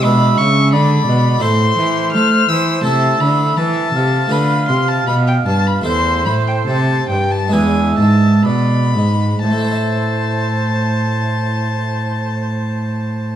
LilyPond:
<<
  \new Staff \with { instrumentName = "Violin" } { \time 4/4 \key a \minor \tempo 4 = 75 b''8 cis'''8 b''4 c'''4 f'''8 e'''8 | a''8 b''8 a''4 b''8 c'''16 a''16 b''16 g''16 a''16 b''16 | c'''8 b''16 g''16 a''8 g''16 a''16 gis''8 a''8 b''4 | a''1 | }
  \new Staff \with { instrumentName = "Oboe" } { \time 4/4 \key a \minor e''4 d''4 c''2 | e''4 e''8 f''2~ f''8 | c''4. r8 e''4 d''8 r8 | c''1 | }
  \new Staff \with { instrumentName = "Harpsichord" } { \time 4/4 \key a \minor <gis d' d''>2 <a e' c''>2 | <a e' c''>2 <a f' b'>2 | <a e' a'>2 <gis d' b'>2 | <a, a e' c'' e''>1 | }
  \new Staff \with { instrumentName = "Harpsichord" } { \clef bass \time 4/4 \key a \minor b,8 cis8 d8 b,8 a,8 e8 a8 e8 | c8 d8 e8 c8 d8 c8 b,8 g,8 | e,8 a,8 c8 g,8 e,8 gis,8 b,8 gis,8 | r1 | }
  \new Staff \with { instrumentName = "Cello" } { \clef bass \time 4/4 \key a \minor b,8 cis8 d8 b,8 a,8 e8 a8 e8 | c8 d8 e8 c8 d8 c8 b,8 g,8 | e,8 a,8 c8 g,8 e,8 gis,8 b,8 gis,8 | a,1 | }
>>